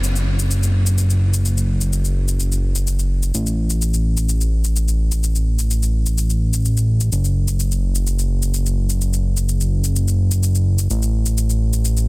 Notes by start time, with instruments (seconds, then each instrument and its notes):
Already playing: analog synth bass F#1
0.04 shaker
0.16 shaker
0.39 shaker
0.51 shaker
0.63 shaker
0.87 shaker
0.98 shaker
1.10 shaker
1.34 shaker
1.45 shaker
1.57 shaker
1.81 shaker
1.93 shaker
2.05 shaker
2.28 shaker
2.40 shaker
2.52 shaker
2.76 shaker
2.87 shaker
2.99 shaker
3.23 shaker
3.34 analog synth bass A1, shaker
3.46 shaker
3.70 shaker
3.82 shaker
3.94 shaker
4.17 shaker
4.29 shaker
4.41 shaker
4.64 shaker
4.76 shaker
4.88 shaker
5.12 shaker
5.23 shaker
5.35 shaker
5.59 shaker
5.71 shaker
5.83 shaker
6.06 shaker
6.18 shaker
6.30 shaker
6.54 shaker
6.65 shaker
6.77 shaker
7.01 shaker
7.12 analog synth bass F#1, shaker
7.24 shaker
7.48 shaker
7.60 shaker
7.72 shaker
7.95 shaker
8.07 shaker
8.19 shaker
8.42 shaker
8.54 shaker
8.66 shaker
8.90 shaker
9.01 shaker
9.13 shaker
9.37 shaker
9.49 shaker
9.61 shaker
9.84 shaker
9.96 shaker
10.08 shaker
10.31 shaker
10.43 shaker
10.55 shaker
10.79 shaker
10.90 analog synth bass A1, shaker
11.02 shaker
11.26 shaker
11.38 shaker
11.50 shaker
11.73 shaker
11.85 shaker
11.97 shaker